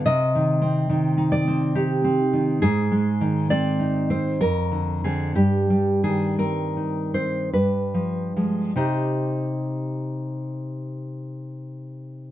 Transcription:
0.06 C3 D#5
0.35 D#3
0.62 C4
0.90 D#3
1.17 D#4
1.32 D5
1.48 C4
1.75 D#4 G4
2.04 C4
2.33 D#3
2.62 G#2 G#4
2.92 G#3
3.21 D#3
3.50 C4 D5
3.80 D#4
4.10 C4 C5
4.41 F2 A#4
4.72 D3
5.04 D3 C4 G#4
5.35 G2 G4
5.70 G3
6.04 D#3 G#4
6.39 C4 A#4
6.77 D#4
7.14 C4 C5
7.53 G2 B4
7.94 F3
8.37 F3 G#3
8.76 C3 D#4 G4 C5 D#5

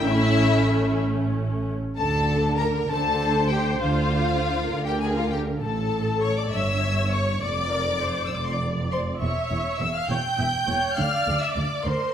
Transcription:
0.04 A1 A3 C#4 E4 E5
1.98 D2 D3 A4 A5
2.59 A#4 A#5
2.89 D2 D3 A4 C5 A5
3.50 G4 G5
3.80 D2 D3 F4 F5
4.71 D2 D3 A#4
4.86 G4 G5
5.01 G#4 G#5
5.16 F4 F5
5.31 G4 G5
5.62 A1 A2 A4 A5
6.22 C#5 C#6
6.37 D5 D6
6.52 G1 G2 C#5 E5 E6
7.12 C#5 C#6
7.42 F1 F2 D5 D6
7.72 A#4
8.02 C5
8.26 E6
8.32 F1 F2 D5 D6
8.44 C6
8.54 D6
8.91 C5 C6
9.21 E1 E2 C#5 E5 C#6
9.51 E1 E2
9.80 E1 E2 E5 E6
9.94 F5 F6
10.09 E1 E2 C#5 G5 G6
10.38 E1 E2 E5
10.68 E1 E2 C#5
10.96 D2 D3 D5 F5 F6
11.27 D2 D3
11.40 E5 E6
11.54 D2 D3 D5 D6
11.84 D2 D3 A#4 C5 C6

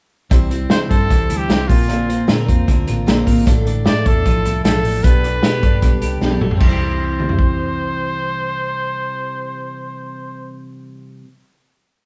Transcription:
0.30 C2 C3 E3 G3 C4 E4 C5, kick, closed hi-hat
0.50 G3 C4 E4 C5, closed hi-hat
0.70 C3 E3 G3 C4 E4 C5, snare, closed hi-hat
0.89 G2 G3 C4 E4 A4 C5, kick, closed hi-hat
1.09 C2 E3 G3 C4 E4 C5, kick, closed hi-hat
1.28 D2 G3 C4 E4 C5, closed hi-hat
1.37 G4
1.48 C2 C3 E3 G3 C4 E4 C5, snare, closed hi-hat
1.67 A#1 A#2 A#3 C4 F4 A#4, kick, open hi-hat
1.87 A#2 D3 A#3 C4 F4 A#4, closed hi-hat
2.07 A#3 C4 F4 A#4, closed hi-hat
2.27 A#2 D3 A#3 C4 F4 A#4, snare, closed hi-hat
2.47 F2 A#3 C4 F4 A#4, kick, closed hi-hat
2.67 D2 D3 A#3 C4 F4 A#4, kick, closed hi-hat
2.87 A1 A#3 C4 F4 A#4, closed hi-hat
3.06 A#1 A#2 D3 A#3 C4 F4 A#4, snare, closed hi-hat
3.26 A1 A#3 C4 F4 A#4, kick, open hi-hat
3.45 A1 A2 F3 A3 D4 E4 A4, kick, closed hi-hat
3.66 A3 D4 E4 A4, closed hi-hat
3.85 A2 F3 A3 D4 E4 A4 D5, snare, closed hi-hat
4.05 E2 A3 D4 E4 A4, kick, closed hi-hat
4.25 A1 F3 A3 D4 E4 A4, kick, closed hi-hat
4.44 C2 A3 D4 E4 A4, closed hi-hat
4.64 B1 A2 F3 A3 D4 E4 A4, snare, closed hi-hat
4.83 A1 A3 D4 E4 A4, open hi-hat
5.04 B1 B2 B3 D4 G4 A4 B4, kick, closed hi-hat
5.23 D4 A4, closed hi-hat
5.43 B2 B3 D4 G4 A4, snare, closed hi-hat
5.62 G2 D4 G4 A4, kick, closed hi-hat
5.82 B1 G3 B3 D4 G4 A4, kick, closed hi-hat
6.01 C2 D4 G4 A4, closed hi-hat
6.21 B1 B3 C4 D4 G4 A4, snare
6.31 D4, high tom
6.41 A1 A3 D4 G4 A4, mid tom
6.51 floor tom
6.57 C2 C3 E3 C5, kick, crash
6.64 G3 C4
6.69 E4 G4 C5
7.20 mid tom
7.29 floor tom
7.39 kick

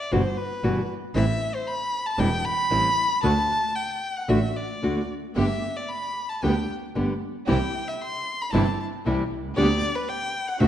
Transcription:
0.00 D5
0.12 G1 B2 E3 G3 B3 F#4 C5
0.37 B4
0.63 G1 B2 E3 G3 B3 F#4
1.14 A1 E3 G3 C4 E4 E5
1.54 C5
1.67 B5
2.06 A5
2.18 E1 E3 G3 C4 E4 G5
2.45 B5
2.70 A1 E3 G3 C4 E4
3.23 D2 D3 A3 D4 F#4 A5
3.75 G5
4.17 F#5
4.28 A1 D3 A3 D4 F#4 E5
4.56 D5
4.83 D2 D3 A3 D4 F#4
5.36 G1 D3 G3 A3 B3 G4 E5
5.76 D5
5.88 B5
6.29 A5
6.43 D2 D3 G3 A3 B3 G4 G5
6.95 G1 D3 G3 A3 B3 G4
7.47 C2 C3 E3 G3 C4 E4 G4 G5
7.88 E5
8.01 C6
8.42 B5
8.52 G1 C3 E3 G3 C4 E4 G4 A5
9.06 C2 C3 E3 G3 C4 E4 G4
9.32 C2
9.56 D2 D3 G3 B3 D4 G4 D5
9.95 B4
10.09 G5
10.47 F#5
10.60 D2 D3 A3 C4 D4 F#4 E5

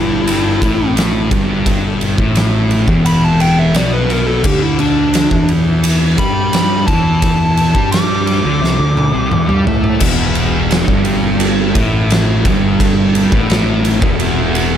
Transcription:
Already playing: G1 G2 E4
0.28 ride
0.62 A1 A2, kick, ride
0.97 snare, ride
1.31 G1 G2, kick, ride
1.66 kick, ride
2.01 ride
2.18 A1 A2, kick
2.35 snare, ride
2.71 ride
2.88 E1 E2, kick
3.06 B5, ride
3.25 A5
3.40 G5, ride
3.59 E5
3.73 B1 B2 D5, snare, ride
3.93 B4
4.10 A#4, ride
4.27 A4
4.44 D2 D3 G4, kick, crash
4.63 E4
4.79 D4, ride
5.14 snare, ride
5.31 E2 E3, kick
5.49 ride
5.84 ride
6.17 G2 G3 B5, kick, ride
6.53 snare, ride
6.87 E2 E3 A5, kick, ride
7.22 kick, ride
7.57 ride
7.75 G2 G3, kick
7.92 D6, snare, ride
8.27 D6, ride
8.43 D2 D3
8.62 C2 C3, snare
8.79 D2 D3
8.97 high tom
9.13 C2 C3
9.31 E2 E3, mid tom
9.48 G2 G3, mid tom
9.67 A2 A3, floor tom
9.84 floor tom
10.00 E1 E2, kick, crash
10.35 ride
10.71 snare, ride
10.88 G1 G2, kick
11.05 ride
11.40 ride
11.75 A1 A2, kick, ride
12.10 snare, ride
12.45 G1 G2, kick, ride
12.80 kick, ride
13.15 ride
13.32 A1 A2, kick
13.50 snare, ride
13.85 ride
14.01 E1 E2, kick
14.20 ride
14.55 ride

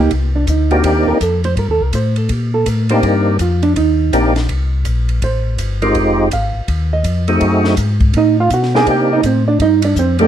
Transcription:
0.00 D#4 G4
0.11 C2, kick, ride
0.36 D4
0.47 D2 D#4, kick, hi-hat pedal, ride
0.71 A#3 C4 D4 D#4 F#4 G4, ride
0.84 D#2 G4, kick, ride
1.07 D#2 A#4
1.20 F2 A4, kick, hi-hat pedal, ride
1.44 C5, ride
1.57 G2 A#4, kick, ride
1.68 D#2 A4
1.81 C2 A#4
1.93 A2 C5, kick, hi-hat pedal, ride
2.16 A4, ride
2.29 A#2 G4, kick, ride
2.54 A4
2.66 A2 A#4, kick, hi-hat pedal, ride
2.89 A#3 C4 D4 D#4 G4 C5, ride
3.03 G2 A#4, kick, ride
3.39 F2 F4, kick, hi-hat pedal, ride
3.63 D4, ride
3.76 D#2 D#4, kick, ride
4.13 A#1 A#3 C4 D4 D#4 G4, kick, hi-hat pedal, ride
4.36 snare, ride
4.49 C2, kick, ride
4.85 A#1, kick, hi-hat pedal, ride
5.09 ride
5.22 A1 C5, kick, ride
5.58 G1, kick, hi-hat pedal, ride
5.82 G#3 C4 D#4 F4 G4 A#4, ride
5.95 F1, kick, ride
6.31 G#1 F5, kick, hi-hat pedal, ride
6.55 G#1
6.68 D#2, kick, ride
6.93 D#5
7.04 F2, kick, hi-hat pedal, ride
7.28 A3 C4 D#4 F#4 G#4, ride
7.41 F#2, kick, ride
7.64 snare
7.77 G#2, kick, hi-hat pedal, ride
8.00 kick, ride
8.14 A2 D#4, kick, ride
8.18 D#5
8.40 F4 F5
8.50 B2 F#4 F#5, kick, hi-hat pedal, ride
8.63 snare
8.74 A#3 C4 D4 D#4 G4 G#4 G#5, snare
8.86 C3 G4, kick, ride
8.91 G5
9.13 D#4 D#5
9.23 A2 C4 C5, kick, hi-hat pedal, ride
9.48 D4 D5
9.59 G2 D#4 D#5, kick, ride
9.82 D4 D5, ride
9.96 F2 C4 C5, kick, hi-hat pedal
10.19 A3 A#3 C4 D4 D#4 G4 A4, ride

